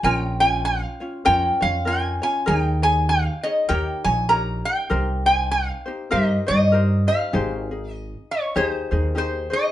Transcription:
0.03 upright bass A#1, ukulele C#4 F4 A#4 C#5, resonator guitar played with a steel bar G5
0.40 ukulele C#4 F4 C#5, resonator guitar played with a steel bar G#5
0.65 resonator guitar played with a steel bar F5
1.00 ukulele C#4 F4 C#5
1.25 upright bass F2, ukulele C#4 F4 A#4 C#5, resonator guitar played with a steel bar G5
1.61 upright bass F2, ukulele C#4 F4 C#5, resonator guitar played with a steel bar F5
1.85 ukulele C#4 F4 A#4 C#5, resonator guitar played with a steel bar G#5
2.22 ukulele C#4 F4 C#5, resonator guitar played with a steel bar G#5
2.46 upright bass D#2, ukulele D#4 G#4 A#4 C#5, resonator guitar played with a steel bar G5
2.82 ukulele D#4 G#4 C#5, resonator guitar played with a steel bar G#5
3.09 resonator guitar played with a steel bar F5
3.43 ukulele D#4 G#4 C#5, resonator guitar played with a steel bar D#5
3.69 upright bass D#2, ukulele D#4 G4 A#4 C#5, resonator guitar played with a steel bar G5
4.04 upright bass A#1, ukulele D#4 C#5, resonator guitar played with a steel bar G#5
4.29 ukulele D#4 G4 A#4 C#5, resonator guitar played with a steel bar A#5
4.65 resonator guitar played with a steel bar G5
4.90 upright bass C2, ukulele D#4 G4 A#4 C5
5.26 ukulele D#4 C5, resonator guitar played with a steel bar G#5
5.51 resonator guitar played with a steel bar F5
5.86 ukulele D#4 G4 C5
6.11 upright bass G2, ukulele D#4 G4 A#4 C5, resonator guitar played with a steel bar D#5
6.47 upright bass G2, ukulele D#4 G4 C5, resonator guitar played with a steel bar D#5
6.72 ukulele D#4 G4 A#4 C5
7.07 ukulele D#4 G4 C5, resonator guitar played with a steel bar F5
7.33 upright bass G#1, ukulele D#4 G4 G#4 C5
7.71 ukulele D#4 G#4
7.94 resonator guitar played with a steel bar D#5
8.31 resonator guitar played with a steel bar C#5
8.56 upright bass D#2, ukulele D#4 G4 G#4 C5, resonator guitar played with a steel bar C#5
8.67 resonator guitar played with a steel bar C5
8.91 upright bass D#2, ukulele D#4 G#4 C5
9.15 ukulele D#4 G4 G#4 C5, resonator guitar played with a steel bar C5
9.50 ukulele D#4 G#4 C5, resonator guitar played with a steel bar D#5

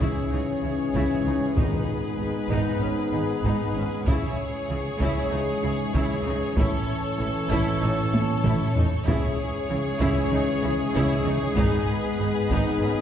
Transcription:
Already playing: trombone section G#2 G#3, woodwind section E3 C#4 G#4 C#5, french horn section E3 C#4, violin section G#4 C#5
0.00 cello section C#3, viola section E4, taiko
0.31 double bass section C#2, cello section C#3, viola section D#4
0.63 double bass section C#2, cello section C#3, viola section E4
0.94 double bass section C#2, cello section C#3, viola section E4, taiko
1.24 double bass section C#2, cello section C#3, viola section D#4
1.56 double bass section G#1, cello section G#2, timpani G#2, french horn section B3 D#4, woodwind section B3 D#4 D#5, viola section D#4, violin section B4, taiko
2.18 double bass section G#1, cello section G#2, viola section D#4
2.49 double bass section G#1, cello section G#2, viola section D#4, taiko
2.81 double bass section G#1, cello section G#2, viola section C#4
3.12 double bass section G#1, cello section G#2, viola section D#4
3.42 double bass section G#1, cello section G#2, viola section D#4, taiko
3.73 double bass section G#1, cello section G#2, viola section C#4
4.05 double bass section C#2, trombone section G#2 G#3, cello section C#3, french horn section E3 C#4, woodwind section E3 C#4 G#4 C#5, viola section E4, violin section G#4 C#5, taiko
4.69 double bass section C#2, cello section C#3, viola section E4
4.99 double bass section C#2, cello section C#3, viola section E4, taiko
5.31 double bass section C#2, cello section C#3, viola section D#4
5.62 double bass section C#2, cello section C#3, viola section E4
5.94 double bass section C#2, cello section C#3, viola section E4, taiko
6.25 double bass section C#2, cello section C#3, viola section D#4
6.57 double bass section A1, cello section A2, trombone section A2 E3, viola section E4, woodwind section A4, violin section A4, taiko
7.18 double bass section A1, cello section A2, viola section E4
7.50 double bass section A1, cello section A2, viola section E4, taiko
7.81 double bass section A1, cello section A2, viola section D#4
8.12 double bass section A1, cello section A2, viola section E4, taiko high
8.44 double bass section A1, cello section A2, viola section E4, taiko mid
8.75 double bass section A1, cello section A2, viola section D#4, taiko low
9.05 double bass section C#2, trombone section G#2 G#3, cello section C#3, woodwind section E3 C#4 G#4 C#5, french horn section E3 C#4, viola section E4, violin section G#4 C#5, taiko
9.69 double bass section C#2, cello section C#3, viola section E4
10.00 double bass section C#2, cello section C#3, viola section E4, taiko
10.31 double bass section C#2, cello section C#3, viola section D#4
10.62 double bass section C#2, cello section C#3, viola section E4, taiko mid
10.94 double bass section C#2, cello section C#3, viola section E4, taiko
11.24 double bass section C#2, cello section C#3, viola section D#4, taiko mid
11.55 double bass section G#1, cello section G#2, woodwind section B3 D#4 D#5, french horn section B3 D#4, viola section D#4, violin section B4, taiko
12.17 double bass section G#1, cello section G#2, viola section D#4
12.49 double bass section G#1, cello section G#2, viola section D#4, taiko
12.81 double bass section G#1, cello section G#2, viola section C#4

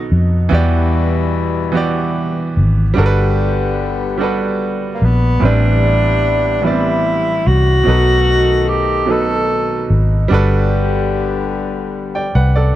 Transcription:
Already playing: grand piano B2 B3 D#4 F#4 A4, tenor saxophone D#4
0.12 fingered electric bass F2
0.49 fingered electric bass E2, horn section B2 E3 G3 E4, grand piano E3 B3 F#4 G4
0.54 grand piano D5
1.72 grand piano E3 B3 F#4 G4
1.77 grand piano D5
2.57 fingered electric bass G#1
2.94 fingered electric bass G1, horn section D3 G3 B3 G4, grand piano G3 D4 F#4
2.98 grand piano A4 A#4
3.06 grand piano B4
4.18 grand piano G3 D4 F#4 A4
4.23 grand piano B4
4.94 tenor saxophone A#3
5.02 fingered electric bass A#1, tenor saxophone B3
5.40 fingered electric bass A1, grand piano A2 E3 G3 C4, horn section G3 B3 E4 B4
5.44 grand piano D4 B4, tenor saxophone D4
6.62 grand piano A2 E3 G3 B3, tenor saxophone E4
6.66 grand piano D4 D5
6.71 grand piano C4
7.47 fingered electric bass C2, tenor saxophone F#4
7.84 fingered electric bass B1, grand piano B2 F#3 D#4, horn section D#3 A3 D#4 A4
7.88 grand piano A4 B4
8.68 tenor saxophone G4
9.06 grand piano B2 F#3 D#4
9.10 grand piano A4 B4, tenor saxophone A4
9.90 fingered electric bass G#1
10.28 fingered electric bass G1, horn section D3 G3 B3 G4, grand piano G3 D4 F#4
10.33 grand piano A4 B4
12.15 grand piano D5 G5
12.35 fingered electric bass C2, grand piano B4 F#5
12.55 grand piano A4 D5

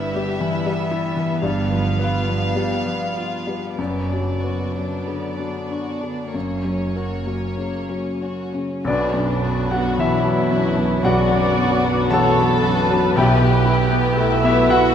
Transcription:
Already playing: double bass section G1, cello section G2, grand piano G2 G3 B4, viola section B3, violin section E4 E5
0.13 grand piano G3, violin section G4
0.40 grand piano E3, violin section E4
0.64 grand piano G3, violin section B3
0.91 violin section G3, grand piano E4
1.16 grand piano E3, violin section B3
1.40 double bass section G1, cello section G2, grand piano G2, violin section F5
1.44 violin section G3
1.71 grand piano F3, violin section B3
1.99 violin section F4, grand piano B4
2.27 grand piano F3, violin section B3
2.56 grand piano G3, violin section G3
2.85 grand piano F3, violin section B3
3.15 violin section F4, grand piano F4
3.46 grand piano G3, violin section B3
3.77 double bass section F#1, cello section F#2, grand piano F#2, viola section B3, violin section B3 D5
4.09 grand piano F#3, violin section D4
4.41 violin section F#4, grand piano B4
4.72 grand piano F#3, violin section D4
5.05 grand piano D3, violin section B3
5.38 grand piano F#3, violin section D4
5.71 grand piano D4, violin section F#4
6.01 grand piano D3, violin section D4
6.31 double bass section F#1, grand piano F#2, cello section F#2, violin section A#3 C#5, viola section A#3
6.64 grand piano F#3, violin section C#4
6.96 violin section F#4, grand piano A#4
7.27 grand piano F#3, violin section C#4
7.57 grand piano C#3, violin section A#3
7.89 grand piano F#3, violin section C#4
8.22 grand piano C#4, violin section F#4
8.55 grand piano C#3, violin section C#4
8.85 grand piano B1 D5, double bass section B1, timpani B2, cello section B2, bassoon F#3, clarinet B3, french horn section B3, violin section D4 F#4, cor anglais B4, flute section D5
8.89 grand piano D4 B4, french horn section F#4
9.14 grand piano F#2, violin section B3 D4
9.42 grand piano B3, violin section D4 F#4
9.69 grand piano F#3 F#4 F#5, violin section B3 D4 F#4
9.74 flute section F#5
9.99 double bass section B1, cello section B2, grand piano E3 E4 E5, violin section D4 E4 F#4, flute section E5
10.25 grand piano F#3, violin section B3 D4
10.51 grand piano F#2, violin section D4 F#4
10.77 grand piano F#3, violin section B3 D4
11.02 grand piano B1 F#4 D5 F#5, double bass section B1, cello section B2, violin section D4 F#4, viola section D5, flute section F#5
11.29 grand piano F#2, violin section B3 D4
11.57 grand piano B3, violin section D4 F#4
11.84 grand piano F#3, violin section B3 D4
12.10 double bass section B1, cello section B2, grand piano E3 A4 F#5 A5, violin section D4 F#4 A4, viola section C#5, flute section A5
12.38 grand piano F#3, violin section B3 D4
12.62 grand piano F#2, violin section D4 F#4, viola section B4
12.90 grand piano F#3, violin section B3 D4
13.16 grand piano B1 G4 E5 G5, double bass section B1, timpani B2, cello section B2, bassoon E3, clarinet B3, french horn section B3 E4, violin section E4 G4, cor anglais B4, flute section G5
13.41 grand piano B2, violin section B3 G4
13.66 grand piano E4, violin section E4
13.91 grand piano B3, violin section B3 G4
14.17 double bass section B1, cello section B2, grand piano A3, violin section E4, viola section E5
14.42 violin section B3 E4 G4, grand piano B3 E4 E5, flute section E5
14.70 grand piano B2 F#4 F#5, violin section E4 F#4, flute section F#5

